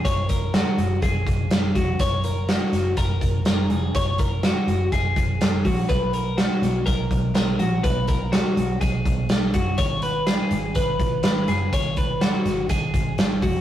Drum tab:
HH |xxxxxxxx|xxxxxxxx|xxxxxxxo|xxxxxxxx|
SD |--o---o-|--oo--o-|--o---o-|--oo--o-|
BD |oo--oo-o|o---oo--|oo--oo-o|o---oo--|

HH |xxxxxxxx|xxxxxxxx|xxxxxxxo|
SD |--o---o-|--o---o-|--oo--o-|
BD |oo--oo-o|o---oo--|oo--oo-o|